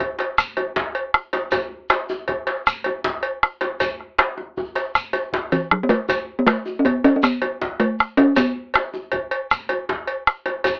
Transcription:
0.00 bombo low, cowbell, djembe bass
0.18 cowbell, djembe slap
0.38 bombo rim, shekere
0.57 bombo rim, cowbell, djembe tone
0.76 bombo rim, bombo low, djembe slap, djembe bass
0.95 cowbell
1.14 bombo rim, djembe slap, shekere
1.33 cowbell, djembe slap, djembe tone
1.51 bombo rim, bombo low, cowbell, djembe bass, shekere
1.89 bombo rim, cowbell, djembe slap, shekere
2.09 djembe tone, shekere
2.28 bombo low, cowbell, djembe slap, djembe bass
2.47 cowbell, djembe slap
2.67 bombo rim, shekere
2.84 bombo rim, cowbell, djembe tone
3.04 bombo rim, bombo low, djembe slap, djembe bass
3.23 cowbell
3.43 bombo rim, djembe slap, shekere
3.61 cowbell, djembe slap, djembe tone
3.80 bombo low, cowbell, djembe slap, djembe bass, shekere
4.00 bombo rim, djembe slap
4.19 bombo rim, cowbell, djembe slap
4.38 djembe slap, djembe tone
4.57 bombo low, djembe bass, shekere
4.75 bombo rim, cowbell, djembe slap, shekere
4.95 bombo rim, shekere
5.13 cowbell, djembe slap, djembe tone, shekere
5.33 bombo low, djembe slap, djembe bass
5.52 talking drum E3, cowbell, djembe slap, shekere
5.71 talking drum F#3, bombo rim
5.83 talking drum B3
5.89 talking drum A3, bombo rim, cowbell, djembe slap, djembe tone
6.09 bombo rim, bombo low, cowbell, djembe bass, shekere
6.39 talking drum B3
6.46 talking drum A3, bombo rim, cowbell, djembe slap, shekere
6.66 djembe tone, shekere
6.79 talking drum C#4
6.85 talking drum B3, bombo low, cowbell, djembe slap, djembe bass
7.04 talking drum C#4, cowbell, djembe slap
7.16 talking drum C#4
7.23 talking drum B3, bombo rim, shekere
7.42 bombo rim, cowbell, djembe tone
7.61 bombo rim, bombo low, djembe slap, djembe bass
7.79 talking drum A3, cowbell
7.99 bombo rim, djembe slap, shekere
8.17 talking drum C#4, cowbell, djembe slap, djembe tone
8.36 talking drum B3, bombo rim, bombo low, cowbell, djembe bass, shekere
8.74 bombo rim, cowbell, djembe slap, shekere
8.94 djembe tone, shekere
9.12 bombo low, cowbell, djembe slap, djembe bass
9.31 cowbell
9.51 bombo rim, shekere
9.69 bombo rim, cowbell, djembe tone
9.89 bombo rim, bombo low, djembe slap, djembe bass
10.07 cowbell
10.27 bombo rim, djembe slap, shekere
10.46 cowbell, djembe slap, djembe tone
10.64 bombo rim, bombo low, cowbell, djembe bass, shekere

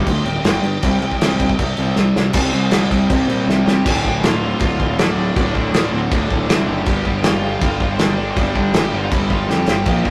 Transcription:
Already playing: distorted electric guitar G2 D3 G3
0.06 picked electric bass D2, distorted electric guitar G2 D3, lead electric guitar C6, kick, crash
0.24 picked electric bass D1, distorted electric guitar G3, lead electric guitar G5, crash
0.29 distorted electric guitar G2 D3
0.44 picked electric bass G1, distorted electric guitar G2 D3 G3, lead electric guitar G5, snare, crash
0.62 picked electric bass G2, distorted electric guitar G2, crash
0.66 distorted electric guitar D3
0.82 picked electric bass C2, distorted electric guitar C3 G3 C4, kick, crash
1.01 picked electric bass C2, distorted electric guitar C3 G3, crash
1.12 kick
1.21 picked electric bass C2, distorted electric guitar C3 G3 C4, snare, crash
1.39 picked electric bass C2, distorted electric guitar C3 G3 C4, kick, crash
1.50 kick
1.59 picked electric bass C2, distorted electric guitar C3 G3, kick, crash
1.77 picked electric bass C2, distorted electric guitar C3 G3 C4, crash
1.96 picked electric bass C2, distorted electric guitar C3 G3 C4, snare
2.16 picked electric bass C2, distorted electric guitar C3 G3, snare
2.33 picked electric bass C2, distorted electric guitar C3 G3 C4, kick, crash
2.52 picked electric bass C2, distorted electric guitar C3 G3 C4, crash
2.71 picked electric bass C2, distorted electric guitar C3 G3 C4, snare, crash
2.90 picked electric bass C2, distorted electric guitar C3 G3 C4, kick, crash
2.94 distorted electric guitar C3
3.10 picked electric bass C2, distorted electric guitar C3 G3 C4, kick, crash
3.27 picked electric bass A#2, distorted electric guitar C3 G3 C4, crash
3.46 picked electric bass C2, distorted electric guitar C3 G3 C4, snare
3.65 picked electric bass C2, distorted electric guitar C3 G3 C4, lead electric guitar G4 G5, snare
3.85 picked electric bass D1, distorted electric guitar D2 A2 D3, kick, crash
4.04 picked electric bass D1, distorted electric guitar D2 A2 D3, kick
4.08 overdriven electric guitar D2 A2
4.21 picked electric bass D1, distorted electric guitar D2 A2 D3, lead electric guitar F5, snare, crash
4.26 lead electric guitar F4
4.42 distorted electric guitar D2 A2 D3
4.59 picked electric bass D1, distorted electric guitar D2 A2 D3, lead electric guitar F4 F5, kick, crash
4.79 picked electric bass D1, distorted electric guitar D2 A2 D3, kick
4.98 picked electric bass D1, distorted electric guitar D2 A2 D3, lead electric guitar D4 D5, snare, crash
5.17 distorted electric guitar D2 A2 D3
5.36 picked electric bass D1, distorted electric guitar D2 A2 D3, lead electric guitar D4 D5, kick, crash
5.54 picked electric bass D1, distorted electric guitar D2 A2 D3, kick
5.73 picked electric bass D1, distorted electric guitar D2 A2 D3, snare, crash
5.92 picked electric bass D1, distorted electric guitar D2 A2 D3, lead electric guitar C4 C5
6.11 picked electric bass D1, distorted electric guitar D2 A2 D3, lead electric guitar D4 D5, kick, crash
6.30 picked electric bass D1, distorted electric guitar D2 A2 D3, kick
6.49 picked electric bass C2, distorted electric guitar D2 A2 D3, snare, crash
6.67 picked electric bass F#1, distorted electric guitar D2 A2 D3, lead electric guitar G4 G5
6.86 picked electric bass G1, distorted electric guitar G2 D3 G3, kick, crash
7.04 picked electric bass G1, distorted electric guitar G2 D3 G3, kick
7.23 picked electric bass G1, distorted electric guitar G2 D3 G3, lead electric guitar F4 F5, snare, crash
7.43 distorted electric guitar G2 D3 G3
7.61 picked electric bass G1, distorted electric guitar G2 D3 G3, lead electric guitar F4 F5, kick, crash
7.80 picked electric bass G1, distorted electric guitar G2 D3 G3, kick
7.95 picked electric bass G1, lead electric guitar C5
7.99 distorted electric guitar G2 D3 G3, lead electric guitar D4 D5, snare, crash
8.17 distorted electric guitar G2 D3 G3
8.31 lead electric guitar C4 C5
8.36 picked electric bass G1, distorted electric guitar G2 D3 G3, lead electric guitar D4 D5, kick, crash
8.54 picked electric bass G1, distorted electric guitar G2 D3 G3, kick
8.73 picked electric bass G1, distorted electric guitar G2 D3 G3, lead electric guitar G4 G5, snare, crash
8.91 picked electric bass G1, distorted electric guitar G2 D3 G3
8.95 lead electric guitar F4 F5
9.10 picked electric bass G1, distorted electric guitar G2 D3 G3, lead electric guitar E4 E5, kick, crash
9.30 picked electric bass G1, distorted electric guitar G2 D3 G3, lead electric guitar F4 F5, kick
9.48 picked electric bass F2, distorted electric guitar G2 D3 G3, lead electric guitar G4 G5, snare
9.67 picked electric bass G1, distorted electric guitar G2 D3 G3, lead electric guitar G4 G5, snare
9.86 picked electric bass A#1, distorted electric guitar A#2 F3 A#3, kick, crash
10.05 picked electric bass A#1, distorted electric guitar A#2 F3 A#3, kick

